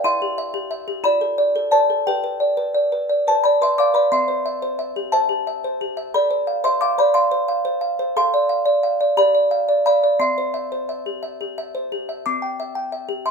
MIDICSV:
0, 0, Header, 1, 2, 480
1, 0, Start_track
1, 0, Key_signature, 0, "major"
1, 0, Tempo, 680272
1, 12, Time_signature, 6, 3, 24, 8
1, 9391, End_track
2, 0, Start_track
2, 0, Title_t, "Music box"
2, 0, Program_c, 0, 10
2, 30, Note_on_c, 0, 64, 73
2, 31, Note_on_c, 0, 84, 116
2, 37, Note_on_c, 0, 76, 85
2, 154, Note_on_c, 0, 67, 57
2, 261, Note_off_c, 0, 76, 0
2, 269, Note_on_c, 0, 76, 63
2, 334, Note_off_c, 0, 67, 0
2, 380, Note_on_c, 0, 67, 64
2, 451, Note_off_c, 0, 76, 0
2, 499, Note_on_c, 0, 76, 62
2, 567, Note_off_c, 0, 67, 0
2, 619, Note_on_c, 0, 67, 60
2, 686, Note_off_c, 0, 76, 0
2, 711, Note_off_c, 0, 84, 0
2, 717, Note_off_c, 0, 64, 0
2, 731, Note_on_c, 0, 65, 73
2, 734, Note_off_c, 0, 67, 0
2, 734, Note_on_c, 0, 83, 112
2, 743, Note_on_c, 0, 74, 83
2, 855, Note_on_c, 0, 69, 56
2, 966, Note_off_c, 0, 74, 0
2, 975, Note_on_c, 0, 74, 60
2, 1044, Note_off_c, 0, 69, 0
2, 1098, Note_on_c, 0, 69, 53
2, 1164, Note_off_c, 0, 74, 0
2, 1193, Note_off_c, 0, 83, 0
2, 1209, Note_on_c, 0, 74, 54
2, 1212, Note_on_c, 0, 81, 98
2, 1218, Note_on_c, 0, 72, 74
2, 1286, Note_off_c, 0, 69, 0
2, 1339, Note_on_c, 0, 69, 48
2, 1402, Note_off_c, 0, 74, 0
2, 1429, Note_off_c, 0, 65, 0
2, 1438, Note_off_c, 0, 72, 0
2, 1442, Note_off_c, 0, 81, 0
2, 1455, Note_off_c, 0, 69, 0
2, 1459, Note_on_c, 0, 79, 90
2, 1461, Note_on_c, 0, 67, 66
2, 1468, Note_on_c, 0, 71, 72
2, 1569, Note_off_c, 0, 71, 0
2, 1578, Note_on_c, 0, 71, 47
2, 1694, Note_on_c, 0, 74, 51
2, 1766, Note_off_c, 0, 71, 0
2, 1815, Note_on_c, 0, 71, 53
2, 1885, Note_off_c, 0, 74, 0
2, 1937, Note_on_c, 0, 74, 47
2, 2005, Note_off_c, 0, 71, 0
2, 2062, Note_on_c, 0, 71, 48
2, 2126, Note_off_c, 0, 74, 0
2, 2147, Note_off_c, 0, 79, 0
2, 2184, Note_on_c, 0, 74, 47
2, 2249, Note_off_c, 0, 71, 0
2, 2310, Note_on_c, 0, 71, 45
2, 2314, Note_on_c, 0, 81, 81
2, 2324, Note_on_c, 0, 72, 59
2, 2370, Note_off_c, 0, 74, 0
2, 2421, Note_off_c, 0, 72, 0
2, 2423, Note_off_c, 0, 81, 0
2, 2424, Note_on_c, 0, 83, 87
2, 2436, Note_on_c, 0, 74, 72
2, 2493, Note_off_c, 0, 71, 0
2, 2537, Note_off_c, 0, 74, 0
2, 2538, Note_off_c, 0, 83, 0
2, 2550, Note_on_c, 0, 71, 46
2, 2554, Note_on_c, 0, 84, 81
2, 2562, Note_on_c, 0, 76, 60
2, 2660, Note_off_c, 0, 76, 0
2, 2663, Note_off_c, 0, 84, 0
2, 2669, Note_on_c, 0, 86, 92
2, 2672, Note_on_c, 0, 74, 43
2, 2680, Note_on_c, 0, 77, 64
2, 2734, Note_off_c, 0, 71, 0
2, 2779, Note_off_c, 0, 77, 0
2, 2779, Note_on_c, 0, 71, 44
2, 2781, Note_off_c, 0, 86, 0
2, 2784, Note_off_c, 0, 74, 0
2, 2785, Note_on_c, 0, 83, 81
2, 2793, Note_on_c, 0, 74, 59
2, 2870, Note_off_c, 0, 67, 0
2, 2895, Note_off_c, 0, 74, 0
2, 2896, Note_off_c, 0, 71, 0
2, 2898, Note_off_c, 0, 83, 0
2, 2906, Note_on_c, 0, 60, 58
2, 2906, Note_on_c, 0, 84, 90
2, 2914, Note_on_c, 0, 76, 71
2, 3020, Note_on_c, 0, 72, 44
2, 3136, Note_off_c, 0, 76, 0
2, 3144, Note_on_c, 0, 76, 56
2, 3208, Note_off_c, 0, 72, 0
2, 3263, Note_on_c, 0, 72, 54
2, 3330, Note_off_c, 0, 76, 0
2, 3379, Note_on_c, 0, 76, 54
2, 3448, Note_off_c, 0, 72, 0
2, 3502, Note_on_c, 0, 67, 51
2, 3566, Note_off_c, 0, 76, 0
2, 3588, Note_off_c, 0, 84, 0
2, 3614, Note_on_c, 0, 81, 100
2, 3617, Note_on_c, 0, 76, 53
2, 3621, Note_on_c, 0, 72, 78
2, 3687, Note_off_c, 0, 67, 0
2, 3733, Note_on_c, 0, 67, 51
2, 3804, Note_off_c, 0, 76, 0
2, 3861, Note_on_c, 0, 76, 56
2, 3922, Note_off_c, 0, 67, 0
2, 3974, Note_off_c, 0, 72, 0
2, 3983, Note_on_c, 0, 72, 53
2, 4046, Note_off_c, 0, 76, 0
2, 4100, Note_on_c, 0, 67, 51
2, 4166, Note_off_c, 0, 72, 0
2, 4213, Note_on_c, 0, 76, 53
2, 4284, Note_off_c, 0, 67, 0
2, 4299, Note_off_c, 0, 81, 0
2, 4304, Note_off_c, 0, 60, 0
2, 4329, Note_off_c, 0, 76, 0
2, 4335, Note_on_c, 0, 69, 62
2, 4335, Note_on_c, 0, 83, 86
2, 4343, Note_on_c, 0, 74, 68
2, 4449, Note_on_c, 0, 72, 52
2, 4567, Note_on_c, 0, 77, 56
2, 4637, Note_off_c, 0, 72, 0
2, 4667, Note_off_c, 0, 74, 0
2, 4673, Note_off_c, 0, 83, 0
2, 4685, Note_on_c, 0, 72, 56
2, 4686, Note_on_c, 0, 84, 108
2, 4692, Note_on_c, 0, 76, 78
2, 4756, Note_off_c, 0, 77, 0
2, 4799, Note_off_c, 0, 76, 0
2, 4804, Note_off_c, 0, 84, 0
2, 4804, Note_on_c, 0, 86, 114
2, 4811, Note_on_c, 0, 77, 92
2, 4874, Note_off_c, 0, 72, 0
2, 4918, Note_off_c, 0, 77, 0
2, 4922, Note_off_c, 0, 86, 0
2, 4925, Note_on_c, 0, 72, 58
2, 4930, Note_on_c, 0, 83, 112
2, 4939, Note_on_c, 0, 74, 79
2, 5039, Note_on_c, 0, 84, 119
2, 5041, Note_off_c, 0, 74, 0
2, 5043, Note_on_c, 0, 77, 85
2, 5045, Note_off_c, 0, 83, 0
2, 5114, Note_off_c, 0, 72, 0
2, 5161, Note_on_c, 0, 72, 62
2, 5272, Note_off_c, 0, 77, 0
2, 5281, Note_on_c, 0, 77, 67
2, 5351, Note_off_c, 0, 72, 0
2, 5397, Note_on_c, 0, 72, 59
2, 5471, Note_off_c, 0, 77, 0
2, 5512, Note_on_c, 0, 77, 58
2, 5589, Note_off_c, 0, 72, 0
2, 5640, Note_on_c, 0, 72, 65
2, 5706, Note_off_c, 0, 77, 0
2, 5727, Note_off_c, 0, 84, 0
2, 5733, Note_off_c, 0, 69, 0
2, 5758, Note_off_c, 0, 72, 0
2, 5761, Note_on_c, 0, 69, 80
2, 5763, Note_on_c, 0, 84, 127
2, 5770, Note_on_c, 0, 77, 93
2, 5883, Note_on_c, 0, 74, 60
2, 5985, Note_off_c, 0, 77, 0
2, 5993, Note_on_c, 0, 77, 65
2, 6071, Note_off_c, 0, 74, 0
2, 6107, Note_on_c, 0, 74, 68
2, 6186, Note_off_c, 0, 77, 0
2, 6233, Note_on_c, 0, 77, 70
2, 6303, Note_off_c, 0, 74, 0
2, 6354, Note_on_c, 0, 74, 59
2, 6426, Note_off_c, 0, 77, 0
2, 6450, Note_off_c, 0, 84, 0
2, 6456, Note_off_c, 0, 69, 0
2, 6471, Note_on_c, 0, 67, 79
2, 6472, Note_off_c, 0, 74, 0
2, 6473, Note_on_c, 0, 83, 124
2, 6480, Note_on_c, 0, 74, 89
2, 6586, Note_off_c, 0, 74, 0
2, 6594, Note_on_c, 0, 74, 59
2, 6711, Note_on_c, 0, 77, 62
2, 6788, Note_off_c, 0, 74, 0
2, 6834, Note_on_c, 0, 74, 54
2, 6907, Note_off_c, 0, 77, 0
2, 6937, Note_off_c, 0, 83, 0
2, 6956, Note_off_c, 0, 74, 0
2, 6956, Note_on_c, 0, 77, 56
2, 6957, Note_on_c, 0, 83, 100
2, 6964, Note_on_c, 0, 74, 78
2, 7073, Note_off_c, 0, 74, 0
2, 7081, Note_on_c, 0, 74, 47
2, 7151, Note_off_c, 0, 77, 0
2, 7177, Note_off_c, 0, 67, 0
2, 7190, Note_off_c, 0, 83, 0
2, 7193, Note_on_c, 0, 60, 63
2, 7195, Note_on_c, 0, 84, 89
2, 7202, Note_off_c, 0, 74, 0
2, 7206, Note_on_c, 0, 76, 64
2, 7323, Note_on_c, 0, 72, 48
2, 7428, Note_off_c, 0, 76, 0
2, 7436, Note_on_c, 0, 76, 52
2, 7516, Note_off_c, 0, 72, 0
2, 7564, Note_on_c, 0, 72, 50
2, 7633, Note_off_c, 0, 76, 0
2, 7684, Note_on_c, 0, 76, 46
2, 7758, Note_off_c, 0, 72, 0
2, 7805, Note_on_c, 0, 67, 43
2, 7879, Note_off_c, 0, 76, 0
2, 7897, Note_off_c, 0, 84, 0
2, 7921, Note_on_c, 0, 76, 44
2, 8000, Note_off_c, 0, 67, 0
2, 8048, Note_on_c, 0, 67, 45
2, 8118, Note_off_c, 0, 76, 0
2, 8171, Note_on_c, 0, 76, 50
2, 8242, Note_off_c, 0, 67, 0
2, 8288, Note_on_c, 0, 72, 45
2, 8364, Note_off_c, 0, 76, 0
2, 8411, Note_on_c, 0, 67, 45
2, 8483, Note_off_c, 0, 72, 0
2, 8530, Note_on_c, 0, 76, 41
2, 8605, Note_off_c, 0, 67, 0
2, 8621, Note_off_c, 0, 60, 0
2, 8649, Note_on_c, 0, 86, 102
2, 8652, Note_off_c, 0, 76, 0
2, 8653, Note_on_c, 0, 60, 60
2, 8765, Note_on_c, 0, 79, 46
2, 8888, Note_on_c, 0, 76, 53
2, 8961, Note_off_c, 0, 79, 0
2, 8999, Note_on_c, 0, 79, 52
2, 9082, Note_off_c, 0, 76, 0
2, 9119, Note_on_c, 0, 76, 50
2, 9197, Note_off_c, 0, 79, 0
2, 9233, Note_on_c, 0, 67, 51
2, 9317, Note_off_c, 0, 76, 0
2, 9341, Note_off_c, 0, 86, 0
2, 9353, Note_on_c, 0, 76, 51
2, 9354, Note_on_c, 0, 84, 77
2, 9391, Note_off_c, 0, 60, 0
2, 9391, Note_off_c, 0, 67, 0
2, 9391, Note_off_c, 0, 76, 0
2, 9391, Note_off_c, 0, 84, 0
2, 9391, End_track
0, 0, End_of_file